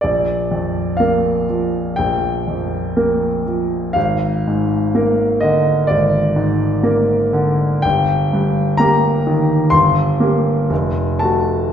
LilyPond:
<<
  \new Staff \with { instrumentName = "Grand piano" } { \time 4/4 \key bes \major \tempo 4 = 61 d''4 f''4 g''2 | f''4. ees''8 d''2 | g''4 bes''4 c'''4. a''8 | }
  \new Staff \with { instrumentName = "Grand piano" } { \clef bass \time 4/4 \key bes \major bes,,8 f,8 <bes bes'>8 f8 bes,,8 f,8 <bes bes'>8 f8 | aes,,8 aes,8 <bes bes'>8 d8 aes,,8 aes,8 <bes bes'>8 d8 | g,,8 g,8 <bes g'>8 ees8 g,,8 <bes g'>8 f,,8 <a ges'>8 | }
>>